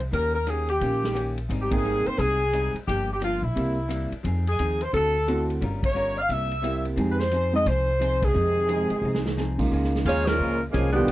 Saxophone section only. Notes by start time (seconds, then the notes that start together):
0.13 A#4
0.35 A#4
0.49 G#4
0.70 G4
1.62 G4
1.72 G#4
2.07 C5
2.19 G#4
2.88 G4
3.13 G4
3.25 F4
3.44 E4
4.49 G#4
4.83 C5
4.94 A4
5.85 C#5
6.19 F5
6.31 E5
7.12 B4
7.20 C5
7.56 D#5
7.68 C5
8.25 G#4
10.06 A#3 F4 G#4 C#5
10.27 G#3 C#4 F4 A#4
10.72 F3 A#3 C#4 G#4
10.93 F3 B3 D4 G4